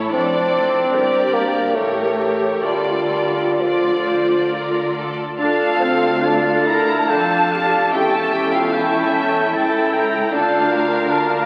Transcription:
Already playing: A1 A2 E4 A4 C#5
0.13 F1 F2 C4 D4 A4 D5
0.93 G1 G2 D4 G4 A#4 D5
1.34 A#3
1.75 A1 A2 A3 G4 A#4 C#5
2.65 D2 D3 G3 F4 A4 D5
3.59 F3 F4 A4 D5
4.06 C5
4.51 A#4
4.96 A4
5.39 D2 D4 F4 A4 F5 A5
5.80 C4 F5
6.23 D4 A4 F5 A5
6.66 E4 A#4 A#5
7.09 F1 F2 D4 F4 A4 F5 G5 A5
7.51 F4 G4 F5
7.93 E1 E2 C#4 E4 G4 A4 E5 G5
8.13 A4 A5
8.34 G4 G5
8.54 F4 F5
8.73 C#4 E4 A4 E5 G5 A5
9.13 G5 A5
9.54 C#2 E4 G5 A5
9.93 G5 A#5
10.32 D2 D4 F4 A4 F5 A5
10.71 A#4
11.09 D4 F5 A5

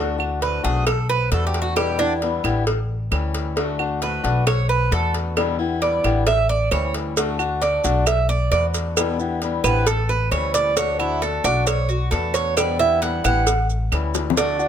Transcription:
Already playing: D2 D3 A3 D4 F#4
0.18 A3 D4 F#4, claves
0.41 D3 A3 D4 F#4 B4, cowbell
0.63 B1 A3 D4 F#4 G#4, cowbell
0.86 A4, muted steel-string acoustic guitar stroke, cowbell, claves
1.09 B4
1.31 E2 D3 A3 B3 F#4 A4, cowbell
1.47 G4
1.54 cowbell
1.62 F#4
1.76 B2 D3 G3 B3 E4 G4, cowbell, claves
1.98 D3 G3 B3 D4 E4
2.21 D3 G3 B3 E4, cowbell
2.44 A1 D3 G3 B3 E4, cowbell, claves
2.66 muted steel-string acoustic guitar stroke, cowbell
3.11 D2 E3 G3 C#4 E4, cowbell, claves
3.34 cowbell
3.56 D3 A3 D4 F#4, cowbell
3.79 A3 D4 F#4, claves
4.01 D3 A3 D4 F#4 B4, cowbell
4.23 B1 A3 D4 F#4, cowbell
4.46 C#5, muted steel-string acoustic guitar stroke, cowbell, claves
4.69 B4
4.91 E2 D3 A3 B3 F#4 A4, cowbell
5.14 cowbell
5.36 B2 D3 G3 B3 E4, cowbell, claves
5.59 D3 G3 B3 E4
5.81 D3 G3 B3 E4 D5, cowbell
6.03 A1 D3 G3 B3 E4, cowbell, claves
6.26 E5, muted steel-string acoustic guitar stroke, cowbell
6.49 D5
6.71 D2 E3 G3 C#4 E4 C#5, cowbell, claves
6.94 cowbell
7.16 D3 A3 D4 F#4, cowbell, maracas
7.39 A3 D4 F#4, claves, maracas
7.61 D3 A3 D4 F#4 D5, cowbell, maracas
7.84 B1 A3 D4 F#4, cowbell, maracas
8.06 E5, muted steel-string acoustic guitar stroke, cowbell, claves, maracas
8.29 D5, maracas
8.51 E2 D3 A3 B3 F#4 D5, cowbell, maracas
8.74 cowbell, maracas
8.96 B2 D3 G3 B3 E4, cowbell, claves, maracas
9.19 D3 G3 B3 E4, maracas
9.42 D3 G3 B3 E4, cowbell, maracas
9.64 A1 D3 G3 B3 E4 B4, cowbell, claves, maracas
9.86 A4, muted steel-string acoustic guitar stroke, cowbell, maracas
10.09 B4, maracas
10.31 D2 E3 G3 C#4 E4 C#5, cowbell, claves, maracas
10.54 D5, cowbell, maracas
10.76 D3 A3 D4 F#4 C#5, cowbell, maracas
10.99 A3 D4 E4 F#4, claves, maracas
11.21 D3 A3 D4 F#4 A4, cowbell, maracas
11.44 B1 A3 D4 F#4 D5, cowbell, maracas
11.67 C#5, muted steel-string acoustic guitar stroke, cowbell, claves, maracas
11.89 F#4, maracas
12.11 E2 D3 A3 B3 F#4 A4, cowbell, maracas
12.34 C#5, cowbell, maracas
12.56 B2 D3 G3 B3 E4 D5, cowbell, claves, maracas
12.79 D3 G3 B3 E4 E5, maracas
13.02 D3 G3 B3 E4 F#5, cowbell, maracas
13.24 A1 D3 G3 B3 E4 F#5, cowbell, claves, maracas
13.47 muted steel-string acoustic guitar stroke, cowbell, maracas
13.70 maracas
13.91 D2 E3 G3 C#4 E4, cowbell, claves, maracas
14.14 cowbell, high bongo, maracas
14.30 low bongo
14.37 D3 A3 D4 F#4, cowbell, maracas
14.59 A3 D4 F#4, maracas

